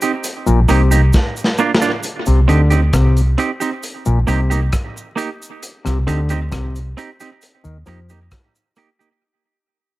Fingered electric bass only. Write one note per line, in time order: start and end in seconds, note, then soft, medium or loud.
0.48 0.68 A#1 medium
0.70 1.10 C2 medium
2.28 2.47 C2 medium
2.49 2.90 D2 medium
2.94 3.35 C2 medium
4.07 4.26 A#1 medium
4.29 4.69 C2 loud
5.86 6.06 C2 loud
6.08 6.49 D2 loud
6.53 6.93 C2 loud
7.65 7.85 D#2 medium
7.87 8.28 F2 medium